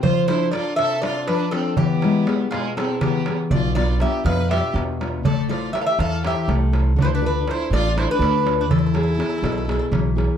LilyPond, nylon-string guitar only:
\new Staff \with { instrumentName = "Nylon-string guitar" } { \time 7/8 \key e \phrygian \tempo 4 = 121 f8 <d' f' a'>8 <d' f' a'>8 c8 <d' f' a'>8 f8 <d' f' a'>8 | e8 <gis b e'>8 <b e' gis'>8 b,8 <b e' gis'>8 e8 <b e' gis'>8 | b,8 <b d' f'>8 <b d' f'>8 b,8 <b d' f'>8 b,8 <b d' f'>8 | a8 <e' a' c''>8 <e' a' c''>8 e8 <e' a' c''>8 a8 <e' a' c''>8 |
d8 <d' f' a'>8 <d' f' a'>8 a8 <d' f' a'>8 d8 <d' f' a'>8 | e8 <b e' gis'>8 <b e' gis'>8 b,8 <b e' gis'>8 e8 <b e' gis'>8 | }